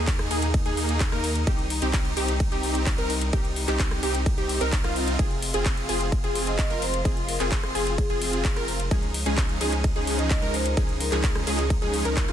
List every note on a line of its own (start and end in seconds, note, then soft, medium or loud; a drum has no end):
0.00 0.28 D#2 loud
0.00 1.43 A#2 medium
0.00 5.15 D#3 medium
0.00 1.43 G#3 medium
0.00 0.28 A#3 medium
0.00 0.28 D#4 medium
0.00 5.15 D#4 medium
0.00 0.28 G#4 medium
0.07 kick loud
0.07 clap loud
0.07 closed hi-hat medium
0.07 ride medium
0.19 cross-stick medium
0.19 closed hi-hat soft
0.31 0.63 D#2 loud
0.31 0.43 A#3 medium
0.31 0.43 D#4 medium
0.31 0.43 G#4 loud
0.31 open hi-hat medium
0.42 closed hi-hat medium
0.54 kick loud
0.54 closed hi-hat medium
0.54 ride medium
0.65 1.10 D#2 loud
0.65 1.09 A#3 medium
0.65 1.09 D#4 medium
0.65 1.09 G#4 medium
0.65 closed hi-hat soft
0.77 open hi-hat loud
0.89 closed hi-hat medium
1.00 kick loud
1.00 clap loud
1.00 closed hi-hat medium
1.00 ride medium
1.12 1.45 D#2 loud
1.12 1.25 A#3 loud
1.12 1.25 D#4 medium
1.12 1.25 A#4 loud
1.12 cross-stick medium
1.12 closed hi-hat soft
1.24 open hi-hat medium
1.35 closed hi-hat medium
1.47 1.80 C2 loud
1.47 8.87 C3 medium
1.47 5.15 G3 medium
1.47 1.60 C4 medium
1.47 1.60 D#4 medium
1.47 1.60 G4 medium
1.47 kick loud
1.47 closed hi-hat medium
1.47 ride medium
1.59 closed hi-hat soft
1.70 open hi-hat loud
1.82 2.14 C2 loud
1.82 2.14 C4 medium
1.82 2.14 D#4 medium
1.82 2.14 G4 medium
1.82 closed hi-hat medium
1.93 kick loud
1.93 clap loud
1.93 closed hi-hat medium
1.93 ride medium
2.05 closed hi-hat soft
2.17 2.49 C2 loud
2.17 2.29 C4 medium
2.17 2.29 D#4 medium
2.17 2.29 G4 medium
2.17 2.29 G4 loud
2.17 open hi-hat medium
2.28 closed hi-hat medium
2.40 kick loud
2.40 closed hi-hat medium
2.40 ride medium
2.52 2.96 C2 medium
2.52 2.95 C4 medium
2.52 2.95 D#4 medium
2.52 2.95 G4 medium
2.52 2.96 G4 medium
2.52 closed hi-hat soft
2.63 open hi-hat loud
2.75 closed hi-hat medium
2.86 kick loud
2.86 clap loud
2.86 closed hi-hat medium
2.86 ride medium
2.98 3.31 C2 loud
2.98 3.11 C4 loud
2.98 3.11 D#4 medium
2.98 3.11 A#4 loud
2.98 closed hi-hat soft
3.10 open hi-hat medium
3.21 closed hi-hat medium
3.33 3.66 C2 loud
3.33 3.46 C4 medium
3.33 3.46 D#4 medium
3.33 3.46 G4 medium
3.33 kick loud
3.33 closed hi-hat medium
3.33 ride medium
3.45 closed hi-hat soft
3.56 open hi-hat loud
3.68 4.01 C2 loud
3.68 4.00 C4 medium
3.68 4.00 D#4 medium
3.68 4.00 G4 medium
3.68 clap soft
3.68 closed hi-hat medium
3.79 kick loud
3.79 clap loud
3.79 closed hi-hat medium
3.79 ride medium
3.91 cross-stick medium
3.91 closed hi-hat soft
4.03 4.35 C2 loud
4.03 4.15 C4 medium
4.03 4.15 D#4 medium
4.03 4.15 G4 medium
4.03 4.15 G4 loud
4.03 open hi-hat medium
4.15 closed hi-hat medium
4.26 kick loud
4.26 closed hi-hat medium
4.26 ride medium
4.38 4.59 C2 loud
4.38 4.59 C4 medium
4.38 4.59 D#4 medium
4.38 4.59 G4 medium
4.38 closed hi-hat soft
4.49 open hi-hat loud
4.61 4.82 C2 loud
4.61 4.81 C4 loud
4.61 4.81 D#4 medium
4.61 4.81 A#4 loud
4.61 closed hi-hat medium
4.72 kick loud
4.72 clap loud
4.72 closed hi-hat medium
4.72 ride medium
4.84 5.17 C2 loud
4.84 5.16 C4 loud
4.84 5.16 D#4 medium
4.84 5.16 F4 loud
4.84 cross-stick medium
4.84 closed hi-hat soft
4.96 open hi-hat medium
5.08 closed hi-hat medium
5.19 5.52 F1 loud
5.19 8.88 F3 medium
5.19 8.88 G#3 medium
5.19 8.88 F4 medium
5.19 5.32 G#4 medium
5.19 kick loud
5.19 closed hi-hat medium
5.19 ride medium
5.31 closed hi-hat soft
5.42 open hi-hat loud
5.54 5.87 F1 loud
5.54 5.86 C4 medium
5.54 5.86 F4 medium
5.54 5.86 G#4 medium
5.54 closed hi-hat medium
5.66 kick loud
5.66 clap loud
5.66 closed hi-hat medium
5.66 ride medium
5.77 closed hi-hat soft
5.89 6.21 F1 loud
5.89 6.01 C4 medium
5.89 6.01 F4 medium
5.89 6.01 G#4 loud
5.89 open hi-hat medium
6.01 closed hi-hat medium
6.12 kick loud
6.12 closed hi-hat medium
6.12 ride medium
6.24 6.68 F1 medium
6.24 6.68 C4 medium
6.24 6.68 F4 medium
6.24 6.68 G#4 medium
6.24 closed hi-hat soft
6.35 open hi-hat loud
6.47 6.55 D#5 medium
6.47 closed hi-hat medium
6.59 6.66 D#5 medium
6.59 kick loud
6.59 clap loud
6.59 closed hi-hat medium
6.59 ride medium
6.70 7.03 F1 loud
6.70 6.83 C4 loud
6.70 6.83 F4 medium
6.70 6.83 A#4 loud
6.70 closed hi-hat soft
6.82 6.97 C5 medium
6.82 open hi-hat medium
6.94 closed hi-hat medium
7.05 7.38 F1 loud
7.05 7.18 C4 medium
7.05 7.18 F4 medium
7.05 7.18 G#4 medium
7.05 kick loud
7.05 closed hi-hat medium
7.05 ride medium
7.17 closed hi-hat soft
7.28 7.44 A#4 medium
7.28 open hi-hat loud
7.40 7.73 F1 loud
7.40 7.72 C4 medium
7.40 7.72 F4 medium
7.40 7.72 G#4 medium
7.40 clap soft
7.40 closed hi-hat medium
7.52 kick loud
7.52 clap loud
7.52 closed hi-hat medium
7.52 ride medium
7.63 cross-stick medium
7.63 closed hi-hat soft
7.75 8.07 F1 loud
7.75 7.87 C4 medium
7.75 7.87 F4 medium
7.75 7.87 G#4 loud
7.75 7.82 G#4 loud
7.75 7.87 G#4 loud
7.75 open hi-hat loud
7.87 7.94 G#4 medium
7.87 closed hi-hat medium
7.98 8.06 G#4 medium
7.98 kick loud
7.98 closed hi-hat medium
7.98 ride medium
8.10 8.54 F1 medium
8.10 8.53 C4 medium
8.10 8.54 F4 medium
8.10 8.54 G#4 medium
8.10 8.17 G#4 medium
8.10 8.54 G#4 medium
8.10 closed hi-hat soft
8.22 open hi-hat loud
8.33 8.41 G#4 medium
8.33 closed hi-hat medium
8.45 8.52 G#4 medium
8.45 kick loud
8.45 clap loud
8.45 closed hi-hat medium
8.45 ride medium
8.56 8.89 F1 loud
8.56 8.69 C4 loud
8.56 8.69 F4 medium
8.56 8.69 A#4 loud
8.56 cross-stick medium
8.56 closed hi-hat soft
8.68 open hi-hat loud
8.80 closed hi-hat medium
8.91 9.24 C#2 loud
8.91 12.32 C#3 medium
8.91 9.04 F3 medium
8.91 12.32 F3 medium
8.91 9.04 G#3 medium
8.91 12.32 G#3 medium
8.91 9.04 C#4 medium
8.91 9.04 D#4 medium
8.91 12.32 D#4 loud
8.91 9.04 G#4 medium
8.91 kick loud
8.91 closed hi-hat medium
8.91 ride medium
9.03 closed hi-hat soft
9.14 open hi-hat loud
9.26 9.59 C#2 loud
9.26 9.58 F3 medium
9.26 9.58 G#3 medium
9.26 9.58 C#4 medium
9.26 9.58 D#4 medium
9.26 9.58 G#4 medium
9.26 9.58 G#4 loud
9.26 closed hi-hat medium
9.38 kick loud
9.38 clap loud
9.38 closed hi-hat medium
9.38 ride medium
9.49 closed hi-hat soft
9.61 9.93 C#2 loud
9.61 9.73 F3 medium
9.61 9.73 G#3 medium
9.61 9.73 C#4 medium
9.61 9.73 D#4 medium
9.61 9.73 G#4 loud
9.61 open hi-hat loud
9.73 closed hi-hat medium
9.84 kick loud
9.84 closed hi-hat medium
9.84 ride medium
9.96 10.40 C#2 loud
9.96 10.40 F3 medium
9.96 10.40 G#3 medium
9.96 10.40 C#4 medium
9.96 10.40 D#4 medium
9.96 10.40 G#4 medium
9.96 closed hi-hat soft
10.07 open hi-hat loud
10.19 10.27 D#5 medium
10.19 closed hi-hat medium
10.30 10.38 D#5 medium
10.30 kick loud
10.30 clap loud
10.30 closed hi-hat medium
10.30 ride medium
10.42 10.75 C#2 loud
10.42 10.55 F3 loud
10.42 10.55 G#3 medium
10.42 10.55 C#4 medium
10.42 10.55 D#4 medium
10.42 10.55 A#4 loud
10.42 closed hi-hat soft
10.54 10.69 C5 medium
10.54 open hi-hat loud
10.66 closed hi-hat medium
10.77 11.10 C#2 loud
10.77 10.90 F3 medium
10.77 10.90 G#3 medium
10.77 10.90 C#4 medium
10.77 10.90 D#4 medium
10.77 10.90 G#4 medium
10.77 kick loud
10.77 closed hi-hat medium
10.77 ride medium
10.89 closed hi-hat soft
11.00 11.16 A#4 medium
11.00 open hi-hat loud
11.12 11.45 C#2 loud
11.12 11.44 F3 medium
11.12 11.44 G#3 medium
11.12 11.44 C#4 medium
11.12 11.44 D#4 medium
11.12 11.44 G#4 medium
11.12 clap soft
11.12 closed hi-hat medium
11.24 kick loud
11.24 clap loud
11.24 closed hi-hat medium
11.24 ride medium
11.35 cross-stick medium
11.35 closed hi-hat soft
11.47 11.80 C#2 loud
11.47 11.59 F3 medium
11.47 11.59 G#3 medium
11.47 11.59 C#4 medium
11.47 11.59 D#4 medium
11.47 11.59 G#4 loud
11.47 open hi-hat loud
11.59 closed hi-hat soft
11.70 kick loud
11.70 closed hi-hat soft
11.70 ride medium
11.82 12.03 C#2 loud
11.82 12.03 F3 medium
11.82 12.03 G#3 medium
11.82 12.03 C#4 medium
11.82 12.03 D#4 medium
11.82 12.03 G#4 medium
11.82 closed hi-hat soft
11.94 open hi-hat loud
12.05 12.26 C#2 loud
12.05 12.25 F3 loud
12.05 12.25 G#3 loud
12.05 12.25 C#4 medium
12.05 12.25 D#4 medium
12.05 12.25 A#4 loud
12.05 closed hi-hat soft
12.17 kick loud
12.17 clap loud
12.17 closed hi-hat soft
12.17 ride medium
12.28 12.32 C#2 medium
12.28 12.32 F3 loud
12.28 12.32 G#3 medium
12.28 12.32 C#4 medium
12.28 12.32 D#4 medium
12.28 12.32 F4 loud
12.28 cross-stick medium
12.28 closed hi-hat soft